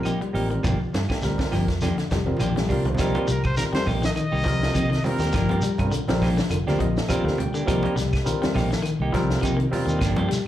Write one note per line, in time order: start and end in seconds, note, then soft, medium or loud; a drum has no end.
0.00 0.11 C4 medium
0.00 0.11 F4 medium
0.00 0.11 A#4 medium
0.00 claves medium
0.05 0.14 F3 medium
0.05 0.21 A#3 medium
0.05 0.21 D#4 medium
0.05 0.20 G4 medium
0.05 closed hi-hat medium
0.05 high conga soft
0.05 shekere medium
0.21 0.38 G3 medium
0.21 muted clean electric guitar stroke soft
0.21 closed hi-hat soft
0.33 0.57 A1 loud
0.33 0.63 G3 medium
0.33 0.50 A#3 medium
0.33 0.64 C4 medium
0.33 0.49 D#4 medium
0.33 0.64 F4 medium
0.33 0.48 G4 medium
0.33 0.64 A#4 medium
0.33 open hi-hat medium
0.33 shekere soft
0.49 0.58 D#3 medium
0.49 muted clean electric guitar stroke soft
0.49 closed hi-hat soft
0.63 0.76 G1 medium
0.63 0.80 F3 medium
0.63 0.81 F3 medium
0.63 0.80 A#3 medium
0.63 0.79 D4 medium
0.63 0.79 G4 medium
0.63 kick medium
0.63 closed hi-hat medium
0.63 high conga soft
0.63 low conga medium
0.63 claves medium
0.63 shekere medium
0.80 muted clean electric guitar stroke soft
0.93 1.06 G2 medium
0.93 muted clean electric guitar stroke soft
0.93 snare medium
0.93 closed hi-hat soft
0.93 high conga medium
0.93 shekere soft
1.09 1.21 A#3 soft
1.09 1.22 D4 soft
1.09 1.22 G4 soft
1.09 kick medium
1.09 snare medium
1.09 closed hi-hat soft
1.09 claves medium
1.22 1.36 D2 medium
1.22 1.71 G3 medium
1.22 1.40 G3 medium
1.22 1.72 C4 medium
1.22 1.72 F4 medium
1.22 1.73 A#4 medium
1.22 muted clean electric guitar stroke soft
1.22 snare soft
1.22 closed hi-hat medium
1.22 high conga soft
1.22 shekere medium
1.38 kick medium
1.38 snare medium
1.38 high conga medium
1.51 1.65 G1 medium
1.51 1.68 F3 medium
1.51 1.69 F3 medium
1.51 1.68 A#3 medium
1.51 1.67 G4 medium
1.51 snare soft
1.51 open hi-hat medium
1.51 high conga medium
1.51 claves medium
1.51 shekere soft
1.68 1.91 F2 medium
1.68 muted clean electric guitar stroke soft
1.68 kick medium
1.68 snare soft
1.68 closed hi-hat soft
1.81 1.91 D3 medium
1.81 1.98 F3 medium
1.81 1.97 A#3 medium
1.81 1.97 D4 medium
1.81 1.96 G4 medium
1.81 snare soft
1.81 closed hi-hat medium
1.81 high conga medium
1.81 claves medium
1.81 shekere medium
1.98 2.06 D3 medium
1.98 muted clean electric guitar stroke soft
1.98 snare soft
1.98 closed hi-hat soft
2.10 2.33 F1 medium
2.10 2.29 G3 medium
2.10 muted clean electric guitar stroke soft
2.10 kick medium
2.10 snare medium
2.10 closed hi-hat soft
2.10 high conga medium
2.10 shekere soft
2.25 2.46 G3 medium
2.25 2.46 C4 medium
2.25 2.47 F4 medium
2.25 2.47 A#4 medium
2.25 high conga medium
2.37 2.67 A#1 medium
2.37 2.56 F3 medium
2.37 2.55 A#3 medium
2.37 2.54 D4 medium
2.37 2.54 G4 medium
2.37 2.68 G5 medium
2.37 closed hi-hat medium
2.37 high conga loud
2.37 claves medium
2.37 shekere medium
2.41 2.50 F3 medium
2.45 high conga loud
2.56 2.73 G3 medium
2.56 muted clean electric guitar stroke soft
2.56 snare medium
2.56 closed hi-hat soft
2.56 high conga medium
2.65 2.85 F3 medium
2.65 2.84 A#3 medium
2.65 low conga medium
2.65 shekere soft
2.69 2.97 C2 medium
2.69 2.85 G3 medium
2.69 2.85 C4 medium
2.69 2.83 D4 medium
2.69 2.86 F4 medium
2.69 2.83 G4 medium
2.69 2.86 A#4 loud
2.69 2.98 C5 medium
2.69 kick medium
2.69 open hi-hat medium
2.85 2.94 D#3 medium
2.85 muted clean electric guitar stroke soft
2.85 closed hi-hat soft
2.85 low conga medium
2.94 3.15 F3 medium
2.94 3.14 A#3 medium
2.94 low conga medium
2.94 claves medium
2.94 shekere medium
2.99 3.27 G3 loud
2.99 3.27 C4 medium
2.99 3.14 D#4 loud
2.99 3.27 F4 loud
2.99 3.13 G4 medium
2.99 3.28 A#4 loud
2.99 kick loud
2.99 snare soft
2.99 closed hi-hat medium
2.99 high conga soft
3.14 3.26 A#3 medium
3.14 3.27 D#4 medium
3.14 3.27 G4 medium
3.14 closed hi-hat soft
3.14 high conga loud
3.27 3.51 C2 medium
3.27 3.45 G3 medium
3.27 3.45 A#4 medium
3.27 muted clean electric guitar stroke soft
3.27 closed hi-hat medium
3.27 shekere medium
3.44 3.57 C5 medium
3.44 muted clean electric guitar stroke soft
3.44 kick medium
3.44 claves medium
3.44 shekere soft
3.57 3.67 D#3 medium
3.57 4.00 G3 medium
3.57 4.00 C4 medium
3.57 4.00 F4 medium
3.57 3.65 A#4 loud
3.57 4.01 A#4 medium
3.57 snare soft
3.57 closed hi-hat medium
3.57 high conga soft
3.57 shekere medium
3.73 3.90 G3 medium
3.73 3.88 C5 loud
3.73 muted clean electric guitar stroke soft
3.73 snare medium
3.73 closed hi-hat soft
3.73 high conga loud
3.86 4.09 A#1 medium
3.86 4.03 A#3 medium
3.86 4.02 D#4 medium
3.86 4.04 G4 medium
3.86 kick medium
3.86 open hi-hat medium
3.86 low conga medium
3.86 claves medium
3.86 shekere soft
4.02 4.10 D#3 medium
4.02 4.11 D#5 loud
4.02 muted clean electric guitar stroke soft
4.02 snare medium
4.02 shekere medium
4.15 4.33 D#3 medium
4.15 5.01 D#5 loud
4.15 muted clean electric guitar stroke soft
4.15 closed hi-hat medium
4.15 high conga soft
4.15 claves medium
4.15 shekere medium
4.32 4.43 C2 medium
4.32 4.44 A#3 medium
4.32 4.44 D#4 medium
4.32 4.44 G4 medium
4.44 4.68 C2 loud
4.44 4.62 F3 medium
4.44 4.73 G3 medium
4.44 4.74 C4 medium
4.44 4.74 F4 medium
4.44 4.74 A#4 loud
4.44 muted clean electric guitar stroke soft
4.44 kick medium
4.44 snare soft
4.44 closed hi-hat soft
4.44 high conga loud
4.62 snare medium
4.62 shekere soft
4.74 4.98 C3 medium
4.74 4.83 F3 medium
4.74 4.91 A#3 medium
4.74 4.90 D#4 medium
4.74 4.89 G4 medium
4.74 kick medium
4.74 closed hi-hat medium
4.74 high conga medium
4.74 claves medium
4.74 shekere medium
4.90 5.07 D#3 medium
4.90 snare soft
4.90 closed hi-hat soft
5.04 5.34 G3 medium
5.04 5.34 C4 medium
5.04 5.34 F4 medium
5.04 5.89 A#4 medium
5.04 5.35 A#4 medium
5.04 muted clean electric guitar stroke soft
5.04 open hi-hat medium
5.04 low conga medium
5.04 shekere soft
5.19 5.30 D#2 medium
5.19 5.28 D#3 medium
5.19 5.34 D#4 soft
5.19 5.34 G4 medium
5.19 snare soft
5.19 closed hi-hat soft
5.19 shekere medium
5.32 5.46 G1 loud
5.32 5.50 F3 loud
5.32 5.49 F3 medium
5.32 5.49 A#3 medium
5.32 5.49 D4 medium
5.32 5.49 G4 medium
5.32 kick loud
5.32 snare soft
5.32 closed hi-hat medium
5.32 claves medium
5.32 shekere medium
5.49 5.60 G2 medium
5.49 5.62 F3 medium
5.49 5.62 A#3 medium
5.49 5.63 G4 medium
5.49 muted clean electric guitar stroke medium
5.49 closed hi-hat soft
5.49 high conga medium
5.62 5.80 G3 medium
5.62 muted clean electric guitar stroke soft
5.62 closed hi-hat medium
5.62 shekere medium
5.78 5.90 G2 loud
5.78 5.92 G3 medium
5.78 5.92 C4 medium
5.78 5.92 F4 medium
5.78 5.93 A#4 medium
5.78 muted clean electric guitar stroke soft
5.78 kick medium
5.78 closed hi-hat soft
5.78 low conga medium
5.78 claves medium
5.78 shekere soft
5.92 6.01 D3 medium
5.92 closed hi-hat medium
5.92 high conga soft
5.92 shekere loud
6.08 6.41 A#1 medium
6.08 6.25 F3 medium
6.08 6.28 G3 loud
6.08 6.28 C4 loud
6.08 6.28 F4 medium
6.08 6.29 A#4 loud
6.08 muted clean electric guitar stroke medium
6.08 snare medium
6.08 closed hi-hat soft
6.08 high conga loud
6.22 6.38 F3 medium
6.22 6.38 A#3 medium
6.22 6.37 D4 medium
6.22 6.37 G4 medium
6.22 kick medium
6.22 snare soft
6.22 open hi-hat medium
6.22 high conga medium
6.22 low conga medium
6.22 claves medium
6.22 shekere soft
6.37 6.45 D3 medium
6.37 muted clean electric guitar stroke soft
6.37 snare medium
6.37 shekere medium
6.50 6.63 F1 medium
6.50 6.67 D3 medium
6.50 6.58 F4 loud
6.50 6.59 A#4 loud
6.50 muted clean electric guitar stroke soft
6.50 closed hi-hat medium
6.50 claves medium
6.50 shekere medium
6.66 6.77 D2 medium
6.66 6.79 F3 medium
6.66 6.87 G3 medium
6.66 6.79 A#3 medium
6.66 6.87 C4 medium
6.66 6.80 D4 medium
6.66 6.87 F4 medium
6.66 6.79 G4 medium
6.66 6.88 A#4 loud
6.66 snare soft
6.66 closed hi-hat soft
6.79 7.02 A#1 loud
6.79 6.96 F3 medium
6.79 7.08 D#5 medium
6.79 muted clean electric guitar stroke medium
6.79 kick medium
6.79 closed hi-hat medium
6.79 high conga medium
6.97 snare medium
6.97 shekere soft
7.09 7.26 F3 medium
7.09 7.36 G3 loud
7.09 7.25 A#3 medium
7.09 7.36 C4 loud
7.09 7.25 D4 medium
7.09 7.37 F4 medium
7.09 7.24 G4 medium
7.09 7.37 A#4 loud
7.09 7.36 F5 medium
7.09 kick medium
7.09 closed hi-hat medium
7.09 high conga medium
7.09 claves medium
7.09 shekere medium
7.24 7.47 D2 medium
7.24 7.41 D3 medium
7.24 muted clean electric guitar stroke soft
7.24 snare soft
7.24 high conga medium
7.38 7.66 G5 medium
7.38 muted clean electric guitar stroke soft
7.38 closed hi-hat medium
7.38 low conga medium
7.38 shekere soft
7.54 7.62 D3 medium
7.54 7.67 A#3 medium
7.54 7.67 D4 medium
7.54 7.67 G4 medium
7.54 shekere medium
7.66 7.80 C2 loud
7.66 7.84 F3 loud
7.66 7.94 G3 loud
7.66 7.84 A#3 medium
7.66 7.94 C4 medium
7.66 7.83 D#4 medium
7.66 7.95 F4 loud
7.66 7.82 G4 loud
7.66 7.95 A#4 loud
7.66 kick loud
7.66 closed hi-hat medium
7.66 claves medium
7.66 shekere medium
7.83 7.96 A#3 medium
7.83 7.96 D#4 medium
7.83 7.96 G4 medium
7.83 closed hi-hat soft
7.83 high conga medium
7.96 8.18 C2 medium
7.96 8.13 G3 medium
7.96 snare soft
7.96 closed hi-hat medium
7.96 shekere medium
8.13 muted clean electric guitar stroke soft
8.13 kick medium
8.13 snare soft
8.13 claves medium
8.13 shekere soft
8.24 8.35 D#3 medium
8.24 8.67 G3 medium
8.24 8.67 C4 medium
8.24 8.68 F4 medium
8.24 8.68 A#4 loud
8.24 closed hi-hat medium
8.24 high conga soft
8.24 shekere loud
8.42 8.58 G3 medium
8.42 muted clean electric guitar stroke medium
8.42 snare medium
8.42 closed hi-hat soft
8.42 high conga medium
8.54 8.78 A#1 loud
8.54 8.71 A#3 medium
8.54 8.71 D#4 medium
8.54 8.71 G4 medium
8.54 kick medium
8.54 snare soft
8.54 open hi-hat medium
8.54 low conga medium
8.54 claves medium
8.54 shekere soft
8.71 8.78 D#3 medium
8.71 muted clean electric guitar stroke medium
8.71 snare medium
8.71 shekere medium
8.82 9.00 D#3 medium
8.82 muted clean electric guitar stroke soft
8.82 closed hi-hat medium
8.82 high conga soft
8.82 claves medium
8.82 shekere medium
9.00 9.10 C2 medium
9.00 9.13 A#3 medium
9.00 9.14 D#4 medium
9.00 9.14 G4 medium
9.12 9.36 C2 loud
9.12 9.29 F3 medium
9.12 9.40 G3 loud
9.12 9.41 C4 loud
9.12 9.41 F4 medium
9.12 9.42 A#4 loud
9.12 muted clean electric guitar stroke soft
9.12 kick medium
9.12 snare soft
9.12 closed hi-hat soft
9.12 high conga medium
9.30 snare medium
9.30 shekere soft
9.41 9.65 C3 medium
9.41 9.51 F3 medium
9.41 9.59 A#3 medium
9.41 9.59 D#4 medium
9.41 9.58 G4 medium
9.41 kick medium
9.41 closed hi-hat medium
9.41 high conga loud
9.41 claves medium
9.41 shekere medium
9.57 9.74 D#3 medium
9.57 muted clean electric guitar stroke soft
9.57 closed hi-hat soft
9.71 10.01 G3 loud
9.71 10.01 C4 loud
9.71 10.02 F4 loud
9.71 10.02 A#4 loud
9.71 muted clean electric guitar stroke soft
9.71 open hi-hat medium
9.71 low conga medium
9.71 shekere soft
9.86 9.97 D#2 medium
9.86 9.94 D#3 medium
9.86 10.02 D#4 medium
9.86 10.01 G4 medium
9.86 closed hi-hat soft
9.86 shekere medium
9.99 10.13 G1 loud
9.99 10.17 F3 medium
9.99 10.17 A#3 medium
9.99 10.17 D4 medium
9.99 10.16 G4 medium
9.99 muted clean electric guitar stroke medium
9.99 kick medium
9.99 snare soft
9.99 closed hi-hat medium
9.99 claves medium
9.99 shekere medium
10.16 10.27 G2 medium
10.16 10.30 F3 medium
10.16 10.30 A#3 medium
10.16 10.31 D4 medium
10.16 10.31 G4 medium
10.16 closed hi-hat soft
10.16 high conga loud
10.29 10.46 G3 medium
10.29 snare soft
10.29 closed hi-hat medium
10.29 shekere medium